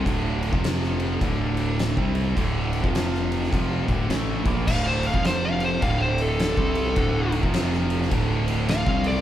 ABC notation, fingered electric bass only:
X:1
M:4/4
L:1/16
Q:"Swing" 1/4=104
K:Dm
V:1 name="Fingered electric bass" clef=bass
D,,,3 F,,,4- F,,, D,,,4- D,,, C,,3 | D,,,3 F,,,4- F,,, F,,,2 D,,,2 A,,,2 B,,,2 | D,,,3 F,,,4- F,,, D,,,4- D,,, C,,3 | D,,,3 F,,,4- F,,, D,,,4- D,,, C,,3 |]